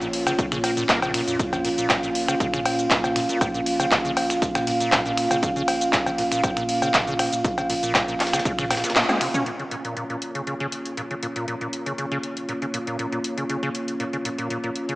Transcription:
Already playing: A#3 C#4 F4 C#5
0.01 A#1 A#2, closed hi-hat, shaker
0.13 closed hi-hat, open hi-hat, ride
0.27 C#3, finger snap, snare, closed hi-hat, cowbell, shaker
0.39 C#3, kick, closed hi-hat, shaker
0.52 A#2 C#3, finger snap, snare, closed hi-hat, shaker
0.64 A#3, closed hi-hat, open hi-hat, ride, cowbell
0.77 A#2, closed hi-hat, shaker
0.89 A#2 A#3, kick, snare, clap, closed hi-hat, shaker
1.02 C#3, snare, closed hi-hat, cowbell, shaker
1.14 A#2, finger snap, closed hi-hat, open hi-hat, ride
1.27 F2 A#2, closed hi-hat, shaker
1.39 A#2 F5, kick, closed hi-hat, shaker
1.53 C#3, closed hi-hat, cowbell, shaker
1.65 A#1 A#2, closed hi-hat, open hi-hat, ride
1.78 A#2, closed hi-hat, shaker
1.90 kick, snare, clap, closed hi-hat, cowbell, shaker
2.03 A#1 A#2, closed hi-hat, shaker
2.15 closed hi-hat, open hi-hat, ride
2.28 C#3, finger snap, closed hi-hat, cowbell, shaker
2.40 C#3, kick, closed hi-hat, shaker
2.54 A#2 C#3, finger snap, closed hi-hat, shaker
2.65 closed hi-hat, open hi-hat, ride, cowbell
2.79 closed hi-hat, shaker
2.91 A#2, kick, snare, clap, closed hi-hat, shaker
3.04 C#3, closed hi-hat, cowbell, shaker
3.16 A#2, finger snap, closed hi-hat, open hi-hat, ride
3.29 A#2, closed hi-hat, shaker
3.41 A#2, kick, closed hi-hat, cowbell, shaker
3.54 A#2, closed hi-hat, shaker
3.66 A#1, closed hi-hat, open hi-hat, ride
3.80 C#3, closed hi-hat, cowbell, shaker
3.91 C#3, kick, snare, clap, closed hi-hat, shaker
4.05 A#1 C#3, closed hi-hat, shaker
4.17 closed hi-hat, open hi-hat, ride, cowbell
4.30 finger snap, snare, closed hi-hat, shaker
4.42 A#2, kick, closed hi-hat, shaker
4.55 A#2 C#3, finger snap, snare, closed hi-hat, cowbell, shaker
4.67 A#2, closed hi-hat, open hi-hat, ride
4.80 A#2, closed hi-hat, shaker
4.92 A#2, kick, snare, clap, closed hi-hat, cowbell, shaker
5.06 A#2, snare, closed hi-hat, shaker
5.17 finger snap, closed hi-hat, open hi-hat, ride
5.31 A#2 C#3, closed hi-hat, cowbell, shaker
5.43 C#3, kick, closed hi-hat, shaker
5.56 C#3, closed hi-hat, shaker
5.68 A#1, closed hi-hat, open hi-hat, ride, cowbell
5.81 closed hi-hat, shaker
5.93 A#2, kick, snare, clap, closed hi-hat, shaker
6.06 A#1 C#3, closed hi-hat, cowbell, shaker
6.18 A#2, closed hi-hat, open hi-hat, ride
6.32 A#2, finger snap, closed hi-hat, shaker
6.44 A#2, kick, closed hi-hat, cowbell, shaker
6.57 A#2, finger snap, closed hi-hat, shaker
6.69 closed hi-hat, open hi-hat, ride
6.82 C#3, closed hi-hat, cowbell, shaker
6.94 A#2 C#3, kick, snare, clap, closed hi-hat, shaker
7.07 C#3, closed hi-hat, shaker
7.19 finger snap, closed hi-hat, open hi-hat, ride, cowbell
7.33 A#2, closed hi-hat, shaker
7.44 A#2, kick, closed hi-hat, shaker
7.58 C#3, closed hi-hat, cowbell, shaker
7.70 A#1 A#2, closed hi-hat, open hi-hat, ride
7.83 A#2, closed hi-hat, shaker
7.95 kick, snare, clap, closed hi-hat, cowbell, shaker
8.08 A#1 A#2, closed hi-hat, shaker
8.20 snare, clap, closed hi-hat, open hi-hat, ride
8.27 snare, closed hi-hat
8.33 C#3, finger snap, snare, closed hi-hat, cowbell, shaker
8.39 snare, closed hi-hat
8.45 C#3, kick, closed hi-hat, shaker
8.59 A#2 C#3, finger snap, snare, closed hi-hat, shaker
8.71 A#2, snare, closed hi-hat, open hi-hat, ride, cowbell
8.77 snare, closed hi-hat
8.84 A#2, snare, closed hi-hat, shaker
8.90 snare, closed hi-hat
8.96 A#2, clap, closed hi-hat, high tom, shaker
9.09 G#3, closed hi-hat, high tom, cowbell, shaker
9.21 C3, finger snap, closed hi-hat, open hi-hat, ride
9.34 C#4, closed hi-hat, mid tom, shaker
9.46 A#2 A#3 C#4 F4 C#5, closed hi-hat
9.60 C#3, closed hi-hat
9.71 A#2, closed hi-hat
9.85 A#2, closed hi-hat
9.97 A#2, closed hi-hat
10.10 A#2, closed hi-hat
10.22 closed hi-hat
10.35 C#3, closed hi-hat
10.47 C#3, closed hi-hat
10.60 C#3, closed hi-hat
10.72 closed hi-hat
10.85 closed hi-hat
10.97 A#2, closed hi-hat
11.11 C#3, closed hi-hat
11.23 A#2, closed hi-hat
11.36 A#2, closed hi-hat
11.48 A#2, closed hi-hat
11.61 A#2, closed hi-hat
11.73 closed hi-hat
11.86 C#3, closed hi-hat
11.98 C#3, closed hi-hat
12.12 C#3, closed hi-hat
12.23 closed hi-hat
12.37 closed hi-hat
12.49 A#2, closed hi-hat
12.62 C#3, closed hi-hat
12.74 A#2, closed hi-hat
12.87 A#2, closed hi-hat
12.99 A#2, closed hi-hat
13.12 A#2, closed hi-hat
13.24 closed hi-hat
13.38 C#3, closed hi-hat
13.49 C#3, closed hi-hat
13.63 C#3, closed hi-hat
13.75 closed hi-hat
13.88 closed hi-hat
14.00 A#2, closed hi-hat
14.13 C#3, closed hi-hat
14.25 A#2, closed hi-hat
14.38 A#2, closed hi-hat
14.50 A#2, closed hi-hat
14.64 A#2, closed hi-hat
14.76 closed hi-hat
14.89 C#3, closed hi-hat

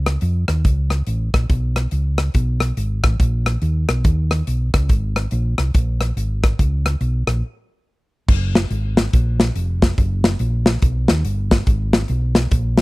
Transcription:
Already playing: C#2
0.06 cross-stick, closed hi-hat
0.21 F2, closed hi-hat
0.48 D#2, cross-stick, closed hi-hat
0.65 C#2, kick, closed hi-hat
0.90 cross-stick, closed hi-hat
1.07 A1, closed hi-hat
1.34 A#1, kick, cross-stick, closed hi-hat
1.49 B1, kick, closed hi-hat
1.76 cross-stick, closed hi-hat
1.91 C#2, closed hi-hat
2.18 cross-stick, closed hi-hat
2.34 B1, kick, closed hi-hat
2.60 cross-stick, closed hi-hat
2.77 G#1, closed hi-hat
3.03 A1, kick, cross-stick, closed hi-hat
3.20 A#1, kick, closed hi-hat
3.46 cross-stick, closed hi-hat
3.62 D#2, closed hi-hat
3.89 B1, cross-stick, closed hi-hat
4.04 D#2, kick, closed hi-hat
4.31 cross-stick, closed hi-hat
4.47 B1, closed hi-hat
4.74 C#2, kick, cross-stick, closed hi-hat
4.89 G#1, kick, closed hi-hat
5.16 cross-stick, closed hi-hat
5.31 A#1, closed hi-hat
5.58 C2, cross-stick, closed hi-hat
5.74 A#1, kick, closed hi-hat
6.01 cross-stick, closed hi-hat
6.17 G#1, closed hi-hat
6.43 kick, cross-stick, closed hi-hat
6.59 C#2, kick, closed hi-hat
6.86 cross-stick, closed hi-hat
7.01 B1, closed hi-hat
7.27 A#1, cross-stick, closed hi-hat
8.28 F#1, kick, crash
8.55 snare, closed hi-hat
8.70 G#1, closed hi-hat
8.97 snare, closed hi-hat
9.13 A#1, kick, closed hi-hat
9.40 snare, closed hi-hat
9.55 F1, closed hi-hat
9.82 kick, snare, closed hi-hat
9.98 F#1, kick, closed hi-hat
10.24 snare, closed hi-hat
10.39 A#1, closed hi-hat
10.66 snare, closed hi-hat
10.82 B1, kick, closed hi-hat
11.08 D#2, snare, closed hi-hat
11.25 G1, closed hi-hat
11.51 kick, snare, closed hi-hat
11.67 G#1, kick, closed hi-hat
11.93 snare, closed hi-hat
12.08 B1, closed hi-hat
12.35 snare, closed hi-hat
12.51 A#1, kick, closed hi-hat
12.78 snare, closed hi-hat

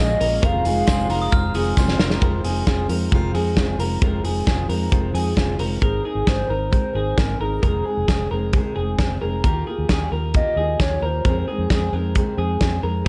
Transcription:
Already playing: A#1 A#2 C#3 A#3 G#4 D#5
0.00 F3 G#3 C#4 F4
0.20 A#1 C#4 F4 A#4, open hi-hat, tambourine
0.24 G#3
0.42 F1 F2 C3 D#3 G#3 C4 F4 A#4 F5, kick, closed hi-hat, tambourine
0.64 F1 D#3 G#3 C4 F4 G#4, open hi-hat, tambourine
0.87 F1 F2 C3 D#3 G#3 C4 G#4 C6, kick, snare, closed hi-hat, tambourine
0.92 F4
1.10 F1 G#3 C4 F4 A#4, open hi-hat, tambourine
1.14 D#3
1.22 D#6
1.32 F1 D#3 G#3 C4 F4 F6, kick, closed hi-hat, tambourine
1.54 F1 D#3 G#3 C4 F4 G#4, open hi-hat, tambourine
1.77 F1 F2 C3 D#3 G#3 C4 F4 C6, kick, snare, tambourine
1.88 snare
1.99 F1 G#3 C4 F4 A#4, snare, tambourine
2.10 snare
2.21 F1 F2 C3 D#3 G#3 C4 F4 A#4, kick, closed hi-hat
2.44 F1 G#3 C4 F4 G#4, open hi-hat
2.48 D#3
2.66 F1 D#3 G#3 C4 F4 G#4, kick, snare, closed hi-hat
2.88 F2 D#3 G#3 C4 F4 A#4, open hi-hat
3.11 F1 F2 C3 D#3 G#3 C4 F4, kick, closed hi-hat
3.34 F2 D#3 G#3 C4 F4 G#4, open hi-hat
3.56 F1 D#3 G#3 C4 F4, kick, snare, closed hi-hat
3.78 F1 D#3 G#3 C4 F4 A#4, open hi-hat
4.01 F1 F2 C3 D#3 G#3 C4 F4 A#4, kick, closed hi-hat
4.23 F1 D#3 G#3 C4 F4 G#4, open hi-hat
4.46 F1 D#3 G#3 C4 F4 G#4, kick, snare, closed hi-hat
4.68 F2 D#3 G#3 C4 F4 A#4, open hi-hat
4.90 F1 F2 C3 D#3 G#3 C4 F4, kick, closed hi-hat
5.12 F2 G#3 C4 F4 G#4, open hi-hat
5.16 D#3
5.34 F1 D#3 G#3 C4 F4, kick, snare, closed hi-hat
5.57 F1 D#3 G#3 C4 F4 A#4, open hi-hat
5.81 G#1 G#3 C4 D#4 G#4 A#4, kick, closed hi-hat
6.03 C4 D#4 G#4 A#4
6.15 G#1
6.25 G#1 G#3 C4 D#4 G#4 A#4 C5, kick, snare, closed hi-hat
6.47 G#1 C4 D#4 A#4
6.71 G#3 C4 D#4 A#4 C5, kick, closed hi-hat
6.93 G#1 C4 D#4 G#4 A#4
7.17 G#1 G#3 C4 D#4 A#4, kick, snare, closed hi-hat
7.39 G#1 C4 D#4 G#4 A#4
7.62 F1 F2 C3 D#3 G#3 C4 G#4 A#4, kick, closed hi-hat
7.84 D#3 G#3 C4 G#4
7.97 F1
8.08 F1 D#3 G#3 C4 G#4, kick, snare, closed hi-hat
8.31 F1 D#3 G#3 C4 G#4 A#4
8.53 F2 C3 D#3 G#3 C4 G#4, kick, closed hi-hat
8.76 F1 D#3 G#3 C4 G#4
8.98 F1 D#3 G#3 C4 G#4, kick, snare, closed hi-hat
9.21 F1 D#3 G#3 C4 G#4 A#4
9.44 D#2 D#3 A#3 F4 G4 A#4, kick, closed hi-hat
9.67 A#3 F4 G4 G#4
9.78 D#2
9.89 D#2 D#3 A#3 F4 G4 G#4, kick, snare, closed hi-hat
10.12 D#2 A#3 F4 G4 A#4
10.34 D#3 A#3 F4 G4 D#5, kick, closed hi-hat
10.56 D#2 F4 G4 G#4
10.62 A#3
10.80 D#2 D#3 A#3 F4 C#5, kick, snare, closed hi-hat
10.85 G4
11.02 D#2 F4 G4 A#4 C5
11.07 A#3
11.25 F2 C3 D#3 G#3 C4 A#4, kick, closed hi-hat
11.29 G#4
11.48 G#3 C4 G#4
11.52 D#3
11.58 F2
11.69 F2 D#3 G#3 C4 G#4, kick, snare, closed hi-hat
11.92 F2 D#3 G#3 C4 G#4 A#4
12.15 F2 C3 D#3 G#3 C4 G#4, kick, closed hi-hat
12.37 F2 D#3 G#3 C4 G#4
12.59 F2 D#3 G#3 C4 G#4, kick, snare, closed hi-hat
12.83 F2 D#3 G#3 C4 G#4 A#4

